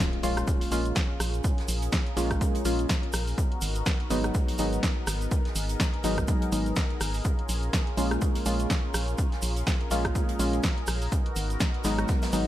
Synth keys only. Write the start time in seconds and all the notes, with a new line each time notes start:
Already playing: G#3 A#3 C#4 F4
0.23 G#3 A#3 C#4 F4
0.71 G#3 A#3 C#4 F4
2.17 G#3 A#3 C#4 F4
2.65 G#3 A#3 C#4 F4
4.10 F#3 G#3 B3 D#4
4.59 F#3 G#3 B3 D#4
6.04 F#3 G#3 B3 D#4
6.52 F#3 G#3 B3 D#4
7.97 G#3 A#3 C#4 F4
8.46 G#3 A#3 C#4 F4
9.91 G#3 A#3 C#4 F4
10.39 G#3 A#3 C#4 F4
11.84 F#3 G#3 B3 D#4
12.33 F#3 G#3 B3 D#4